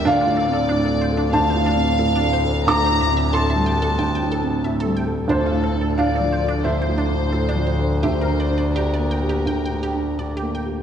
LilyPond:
<<
  \new Staff \with { instrumentName = "Violin section" } { \time 4/4 \key d \minor \tempo 4 = 90 d''2 f''2 | bes''4 a''2 r4 | a'4 d''4 c''2 | c''4 bes'2~ bes'8 r8 | }
  \new Staff \with { instrumentName = "Synth pluck" } { \time 4/4 \key d \minor d'16 f'16 a'16 a'16 d'16 a'16 c''16 d'16 c''16 c''16 d'16 r16 a'16 d'16 c''16 r16 | a'16 c''16 e''16 e''16 a'16 e''16 g''16 a'16 g''16 g''16 a'16 r16 e''16 a'16 g''16 r16 | d'16 f'16 a'16 a'16 d'16 a'16 c''16 d'16 c''16 c''16 d'16 r16 a'16 d'16 c''16 r16 | g'16 bes'16 d''16 d''16 g'16 d''16 g''16 g'16 g''16 g''16 g'16 r16 d''16 g'16 g''16 r16 | }
  \new Staff \with { instrumentName = "Felt piano" } { \time 4/4 \key d \minor f''2 a''2 | d'''4 c'''2 r4 | c''4 f''4 e''2 | e''4 d''2~ d''8 r8 | }
  \new Staff \with { instrumentName = "Felt piano" } { \clef bass \time 4/4 \key d \minor \tuplet 3/2 { d,8 a,8 c'8 a,8 a8 a'8 d,8 a,8 c'8 a,8 a8 a'8 } | \tuplet 3/2 { d,8 a,8 c'8 a,8 g8 a'8 d,8 a,8 c'8 a,8 g8 a'8 } | \tuplet 3/2 { d,8 a,8 d'8 a,8 f8 a'8 d,8 a,8 d'8 a,8 f8 a'8 } | \tuplet 3/2 { d,8 d8 d'8 d8 bes8 g'8 d,8 d8 d'8 d8 bes8 g'8 } | }
  \new Staff \with { instrumentName = "Double bass" } { \clef bass \time 4/4 \key d \minor d,1~ | d,1 | d,1~ | d,1 | }
>>